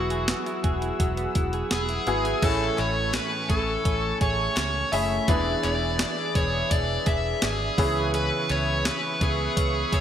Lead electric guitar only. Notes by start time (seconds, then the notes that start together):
Already playing: F#4
1.72 G#4
2.44 A4
2.79 C#5
3.15 B4
3.50 A4
4.22 C#5
4.58 C#5
4.93 E5
5.29 D5
5.64 D5
6.36 C#5
6.71 D5
7.07 E5
7.44 G#4
8.15 B4
8.51 C#5
8.87 B4
9.23 G#4
9.94 C#5